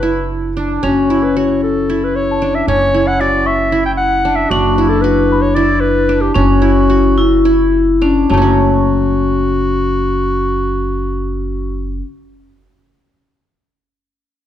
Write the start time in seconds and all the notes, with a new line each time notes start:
Already playing: F#1 D4 F#4 B4 F#5 A5
0.03 E4
0.57 D4
0.83 F#1 C#4 F#4
1.10 E4
1.24 B4
1.37 F#4 C#5
1.63 A4
1.90 E4
2.04 B4
2.16 C#5
2.31 A5
2.42 D4
2.55 E5
2.67 F#1 C#4 C#5
2.94 E4
3.08 F#5
3.20 F#4 D5
3.46 E5 C#6
3.72 E4
3.86 G5
3.97 F#5
4.25 D4
4.36 E5
4.51 F#1 D4 F#4
4.78 E4
4.89 A4
5.02 F#4 B4
5.32 B5
5.42 C#5
5.55 E4 D5
5.81 B4
6.09 D4
6.21 G4
6.34 F#1 C#4 F#4
6.62 E4
6.90 F#4
7.18 E4
7.45 E4
8.02 C#4 D4
8.30 F#1 F#3 C#4 F#4 A5
8.34 A3 C#4
8.42 F#4